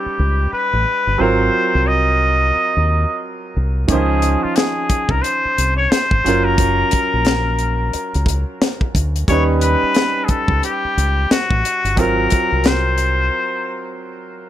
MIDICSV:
0, 0, Header, 1, 6, 480
1, 0, Start_track
1, 0, Tempo, 674157
1, 846, Time_signature, 4, 2, 24, 8
1, 10320, End_track
2, 0, Start_track
2, 0, Title_t, "Muted trumpet"
2, 0, Program_c, 0, 59
2, 0, Note_on_c, 0, 67, 76
2, 369, Note_off_c, 0, 67, 0
2, 378, Note_on_c, 0, 71, 83
2, 859, Note_on_c, 0, 72, 93
2, 870, Note_off_c, 0, 71, 0
2, 1331, Note_on_c, 0, 75, 91
2, 1341, Note_off_c, 0, 72, 0
2, 2288, Note_off_c, 0, 75, 0
2, 2771, Note_on_c, 0, 68, 79
2, 3155, Note_on_c, 0, 65, 72
2, 3165, Note_off_c, 0, 68, 0
2, 3247, Note_on_c, 0, 68, 81
2, 3258, Note_off_c, 0, 65, 0
2, 3637, Note_on_c, 0, 70, 82
2, 3648, Note_off_c, 0, 68, 0
2, 3718, Note_on_c, 0, 72, 90
2, 3728, Note_off_c, 0, 70, 0
2, 4103, Note_off_c, 0, 72, 0
2, 4107, Note_on_c, 0, 73, 90
2, 4202, Note_on_c, 0, 72, 92
2, 4213, Note_off_c, 0, 73, 0
2, 4587, Note_on_c, 0, 70, 91
2, 4597, Note_off_c, 0, 72, 0
2, 6030, Note_off_c, 0, 70, 0
2, 6610, Note_on_c, 0, 73, 93
2, 6717, Note_off_c, 0, 73, 0
2, 6848, Note_on_c, 0, 71, 91
2, 7295, Note_on_c, 0, 68, 60
2, 7306, Note_off_c, 0, 71, 0
2, 7332, Note_on_c, 0, 69, 87
2, 7343, Note_off_c, 0, 68, 0
2, 7569, Note_off_c, 0, 69, 0
2, 7578, Note_on_c, 0, 67, 90
2, 8058, Note_on_c, 0, 66, 88
2, 8069, Note_off_c, 0, 67, 0
2, 8540, Note_on_c, 0, 70, 86
2, 8551, Note_off_c, 0, 66, 0
2, 9023, Note_on_c, 0, 72, 82
2, 9033, Note_off_c, 0, 70, 0
2, 9974, Note_off_c, 0, 72, 0
2, 10320, End_track
3, 0, Start_track
3, 0, Title_t, "Grand piano"
3, 0, Program_c, 1, 0
3, 0, Control_c, 1, 64, 127
3, 0, Note_on_c, 1, 55, 63
3, 0, Note_on_c, 1, 61, 52
3, 0, Note_on_c, 1, 63, 53
3, 0, Note_on_c, 1, 71, 64
3, 820, Note_off_c, 1, 61, 0
3, 825, Note_off_c, 1, 63, 0
3, 831, Note_off_c, 1, 71, 0
3, 838, Note_off_c, 1, 55, 0
3, 841, Note_on_c, 1, 54, 61
3, 848, Note_on_c, 1, 60, 57
3, 855, Control_c, 1, 64, 0
3, 861, Note_on_c, 1, 65, 54
3, 869, Note_on_c, 1, 70, 65
3, 981, Control_c, 1, 64, 127
3, 2735, Note_off_c, 1, 54, 0
3, 2739, Note_off_c, 1, 60, 0
3, 2745, Note_off_c, 1, 65, 0
3, 2749, Note_off_c, 1, 70, 0
3, 2761, Note_on_c, 1, 51, 45
3, 2772, Note_on_c, 1, 61, 56
3, 2777, Control_c, 1, 64, 0
3, 2783, Note_on_c, 1, 63, 53
3, 2793, Note_on_c, 1, 72, 66
3, 2807, Note_on_c, 1, 53, 60
3, 2820, Note_off_c, 1, 51, 0
3, 2898, Control_c, 1, 64, 127
3, 4421, Note_off_c, 1, 61, 0
3, 4426, Note_off_c, 1, 63, 0
3, 4431, Note_off_c, 1, 72, 0
3, 4438, Note_off_c, 1, 53, 0
3, 4445, Note_on_c, 1, 54, 58
3, 4456, Control_c, 1, 64, 0
3, 4456, Note_on_c, 1, 61, 57
3, 4465, Note_on_c, 1, 65, 54
3, 4474, Note_on_c, 1, 70, 67
3, 4597, Control_c, 1, 64, 127
3, 6337, Note_off_c, 1, 54, 0
3, 6342, Note_off_c, 1, 61, 0
3, 6347, Note_off_c, 1, 65, 0
3, 6352, Note_off_c, 1, 70, 0
3, 6607, Note_on_c, 1, 55, 63
3, 6614, Control_c, 1, 64, 0
3, 6616, Note_on_c, 1, 61, 53
3, 6624, Note_on_c, 1, 63, 55
3, 6635, Note_on_c, 1, 71, 67
3, 6748, Control_c, 1, 64, 127
3, 8498, Note_off_c, 1, 55, 0
3, 8503, Note_off_c, 1, 61, 0
3, 8506, Note_off_c, 1, 63, 0
3, 8512, Note_off_c, 1, 71, 0
3, 8517, Note_on_c, 1, 54, 63
3, 8526, Note_on_c, 1, 60, 56
3, 8534, Control_c, 1, 64, 0
3, 8537, Note_on_c, 1, 65, 56
3, 8547, Note_on_c, 1, 70, 66
3, 8679, Control_c, 1, 64, 127
3, 10320, Note_off_c, 1, 54, 0
3, 10320, Note_off_c, 1, 60, 0
3, 10320, Note_off_c, 1, 65, 0
3, 10320, Note_off_c, 1, 70, 0
3, 10320, End_track
4, 0, Start_track
4, 0, Title_t, "Fingered electric bass"
4, 0, Program_c, 2, 33
4, 137, Note_on_c, 2, 37, 86
4, 336, Note_off_c, 2, 37, 0
4, 522, Note_on_c, 2, 33, 78
4, 597, Note_off_c, 2, 33, 0
4, 762, Note_on_c, 2, 31, 74
4, 837, Note_off_c, 2, 31, 0
4, 856, Note_on_c, 2, 32, 86
4, 1055, Note_off_c, 2, 32, 0
4, 1245, Note_on_c, 2, 36, 84
4, 1783, Note_off_c, 2, 36, 0
4, 1970, Note_on_c, 2, 39, 77
4, 2166, Note_off_c, 2, 39, 0
4, 2538, Note_on_c, 2, 36, 76
4, 2736, Note_off_c, 2, 36, 0
4, 2771, Note_on_c, 2, 37, 81
4, 3097, Note_off_c, 2, 37, 0
4, 3626, Note_on_c, 2, 36, 81
4, 3708, Note_off_c, 2, 36, 0
4, 3974, Note_on_c, 2, 36, 78
4, 4174, Note_off_c, 2, 36, 0
4, 4357, Note_on_c, 2, 32, 69
4, 4434, Note_off_c, 2, 32, 0
4, 4454, Note_on_c, 2, 30, 87
4, 4857, Note_off_c, 2, 30, 0
4, 5081, Note_on_c, 2, 34, 69
4, 5621, Note_off_c, 2, 34, 0
4, 5804, Note_on_c, 2, 37, 85
4, 6002, Note_off_c, 2, 37, 0
4, 6373, Note_on_c, 2, 38, 77
4, 6573, Note_off_c, 2, 38, 0
4, 6612, Note_on_c, 2, 39, 85
4, 6937, Note_off_c, 2, 39, 0
4, 7468, Note_on_c, 2, 37, 78
4, 7548, Note_off_c, 2, 37, 0
4, 7812, Note_on_c, 2, 37, 91
4, 8013, Note_off_c, 2, 37, 0
4, 8196, Note_on_c, 2, 33, 78
4, 8273, Note_off_c, 2, 33, 0
4, 8433, Note_on_c, 2, 31, 73
4, 8530, Note_off_c, 2, 31, 0
4, 8530, Note_on_c, 2, 32, 92
4, 8731, Note_off_c, 2, 32, 0
4, 8916, Note_on_c, 2, 36, 69
4, 9459, Note_off_c, 2, 36, 0
4, 10320, End_track
5, 0, Start_track
5, 0, Title_t, "Muted fingered electric bass strokes"
5, 44, Note_on_c, 9, 29, 38
5, 115, Note_off_c, 9, 29, 0
5, 374, Note_on_c, 9, 29, 42
5, 445, Note_off_c, 9, 29, 0
5, 1820, Note_on_c, 9, 29, 38
5, 1891, Note_off_c, 9, 29, 0
5, 3164, Note_on_c, 9, 29, 40
5, 3236, Note_off_c, 9, 29, 0
5, 3492, Note_on_c, 9, 29, 39
5, 3563, Note_off_c, 9, 29, 0
5, 3882, Note_on_c, 9, 29, 41
5, 3953, Note_off_c, 9, 29, 0
5, 5656, Note_on_c, 9, 29, 37
5, 5727, Note_off_c, 9, 29, 0
5, 7000, Note_on_c, 9, 29, 40
5, 7072, Note_off_c, 9, 29, 0
5, 7327, Note_on_c, 9, 29, 44
5, 7399, Note_off_c, 9, 29, 0
5, 7723, Note_on_c, 9, 29, 40
5, 7794, Note_off_c, 9, 29, 0
5, 8053, Note_on_c, 9, 29, 44
5, 8124, Note_off_c, 9, 29, 0
5, 10320, End_track
6, 0, Start_track
6, 0, Title_t, "Drums"
6, 2766, Note_on_c, 9, 42, 76
6, 2767, Note_on_c, 9, 36, 98
6, 2837, Note_off_c, 9, 42, 0
6, 2838, Note_off_c, 9, 36, 0
6, 3006, Note_on_c, 9, 42, 71
6, 3077, Note_off_c, 9, 42, 0
6, 3245, Note_on_c, 9, 42, 60
6, 3259, Note_on_c, 9, 38, 102
6, 3316, Note_off_c, 9, 42, 0
6, 3330, Note_off_c, 9, 38, 0
6, 3485, Note_on_c, 9, 42, 60
6, 3487, Note_on_c, 9, 36, 78
6, 3556, Note_off_c, 9, 42, 0
6, 3558, Note_off_c, 9, 36, 0
6, 3623, Note_on_c, 9, 36, 79
6, 3694, Note_off_c, 9, 36, 0
6, 3732, Note_on_c, 9, 42, 64
6, 3803, Note_off_c, 9, 42, 0
6, 3975, Note_on_c, 9, 42, 64
6, 4047, Note_off_c, 9, 42, 0
6, 4214, Note_on_c, 9, 38, 104
6, 4217, Note_on_c, 9, 42, 74
6, 4285, Note_off_c, 9, 38, 0
6, 4288, Note_off_c, 9, 42, 0
6, 4352, Note_on_c, 9, 36, 88
6, 4423, Note_off_c, 9, 36, 0
6, 4457, Note_on_c, 9, 42, 74
6, 4528, Note_off_c, 9, 42, 0
6, 4685, Note_on_c, 9, 36, 96
6, 4685, Note_on_c, 9, 42, 77
6, 4756, Note_off_c, 9, 42, 0
6, 4757, Note_off_c, 9, 36, 0
6, 4921, Note_on_c, 9, 42, 75
6, 4935, Note_on_c, 9, 36, 78
6, 4993, Note_off_c, 9, 42, 0
6, 5006, Note_off_c, 9, 36, 0
6, 5160, Note_on_c, 9, 42, 58
6, 5174, Note_on_c, 9, 38, 106
6, 5231, Note_off_c, 9, 42, 0
6, 5245, Note_off_c, 9, 38, 0
6, 5402, Note_on_c, 9, 42, 52
6, 5473, Note_off_c, 9, 42, 0
6, 5650, Note_on_c, 9, 42, 65
6, 5721, Note_off_c, 9, 42, 0
6, 5799, Note_on_c, 9, 42, 40
6, 5870, Note_off_c, 9, 42, 0
6, 5881, Note_on_c, 9, 36, 81
6, 5898, Note_on_c, 9, 42, 58
6, 5952, Note_off_c, 9, 36, 0
6, 5969, Note_off_c, 9, 42, 0
6, 6135, Note_on_c, 9, 38, 104
6, 6138, Note_on_c, 9, 42, 81
6, 6206, Note_off_c, 9, 38, 0
6, 6209, Note_off_c, 9, 42, 0
6, 6272, Note_on_c, 9, 36, 82
6, 6344, Note_off_c, 9, 36, 0
6, 6371, Note_on_c, 9, 36, 86
6, 6378, Note_on_c, 9, 42, 67
6, 6442, Note_off_c, 9, 36, 0
6, 6449, Note_off_c, 9, 42, 0
6, 6520, Note_on_c, 9, 42, 53
6, 6591, Note_off_c, 9, 42, 0
6, 6607, Note_on_c, 9, 36, 100
6, 6608, Note_on_c, 9, 42, 72
6, 6678, Note_off_c, 9, 36, 0
6, 6679, Note_off_c, 9, 42, 0
6, 6845, Note_on_c, 9, 42, 70
6, 6916, Note_off_c, 9, 42, 0
6, 7081, Note_on_c, 9, 42, 65
6, 7095, Note_on_c, 9, 38, 101
6, 7153, Note_off_c, 9, 42, 0
6, 7166, Note_off_c, 9, 38, 0
6, 7323, Note_on_c, 9, 42, 57
6, 7326, Note_on_c, 9, 36, 81
6, 7394, Note_off_c, 9, 42, 0
6, 7397, Note_off_c, 9, 36, 0
6, 7463, Note_on_c, 9, 36, 73
6, 7535, Note_off_c, 9, 36, 0
6, 7570, Note_on_c, 9, 42, 66
6, 7642, Note_off_c, 9, 42, 0
6, 7818, Note_on_c, 9, 42, 62
6, 7889, Note_off_c, 9, 42, 0
6, 8054, Note_on_c, 9, 38, 103
6, 8057, Note_on_c, 9, 42, 79
6, 8125, Note_off_c, 9, 38, 0
6, 8128, Note_off_c, 9, 42, 0
6, 8192, Note_on_c, 9, 36, 89
6, 8263, Note_off_c, 9, 36, 0
6, 8296, Note_on_c, 9, 42, 69
6, 8367, Note_off_c, 9, 42, 0
6, 8439, Note_on_c, 9, 42, 45
6, 8510, Note_off_c, 9, 42, 0
6, 8525, Note_on_c, 9, 36, 96
6, 8525, Note_on_c, 9, 42, 76
6, 8596, Note_off_c, 9, 36, 0
6, 8596, Note_off_c, 9, 42, 0
6, 8760, Note_on_c, 9, 42, 75
6, 8774, Note_on_c, 9, 36, 87
6, 8832, Note_off_c, 9, 42, 0
6, 8845, Note_off_c, 9, 36, 0
6, 8998, Note_on_c, 9, 42, 57
6, 9012, Note_on_c, 9, 38, 103
6, 9069, Note_off_c, 9, 42, 0
6, 9083, Note_off_c, 9, 38, 0
6, 9239, Note_on_c, 9, 42, 55
6, 9311, Note_off_c, 9, 42, 0
6, 10320, End_track
0, 0, End_of_file